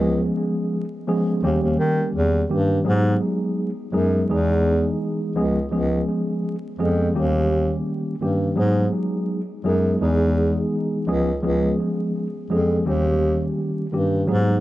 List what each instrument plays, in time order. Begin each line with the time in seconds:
Already playing: bass clarinet C#2
0.00 tine electric piano F3 G#3 B3 C#4 G#4
1.07 tine electric piano F3 G#3 B3 C#4 G#4
1.43 bass clarinet D#2, tine electric piano D#3 G3 A#3 C#4 G4
1.63 bass clarinet D#2
1.79 bass clarinet D#3
2.15 bass clarinet E2
2.49 bass clarinet G2, tine electric piano D#3 G3 A#3 C#4 G4
2.84 bass clarinet G#2, tine electric piano F#3 G#3 B3 D#4 G#4
3.92 bass clarinet F#2, tine electric piano F#3 G#3 B3 D#4 G#4
4.29 bass clarinet E2, tine electric piano E3 G#3 B3 D#4 G#4
5.36 bass clarinet C#2, tine electric piano F3 G#3 B3 C#4 G#4
5.71 bass clarinet C#2, tine electric piano F3 G#3 B3 C#4 G#4
6.79 bass clarinet F2, tine electric piano F3 G#3 B3 C#4 G#4
7.14 bass clarinet D#2, tine electric piano D#3 G3 A#3 C#4 G4
8.21 bass clarinet G2, tine electric piano D#3 G3 A#3 C#4 G4
8.56 bass clarinet G#2, tine electric piano F#3 G#3 B3 D#4 G#4
9.64 bass clarinet F#2, tine electric piano F#3 G#3 B3 D#4 G#4
10.00 bass clarinet E2, tine electric piano E3 G#3 B3 D#4 G#4
11.07 bass clarinet C#2, tine electric piano F3 G#3 B3 C#4 G#4
11.43 bass clarinet C#2, tine electric piano F3 G#3 B3 C#4 G#4
12.50 bass clarinet F2, tine electric piano F3 G#3 B3 C#4 G#4
12.86 bass clarinet D#2, tine electric piano D#3 G3 A#3 C#4 G4
13.92 bass clarinet G2, tine electric piano D#3 G3 A#3 C#4 G4
14.27 bass clarinet G#2, tine electric piano F#3 G#3 B3 D#4 G#4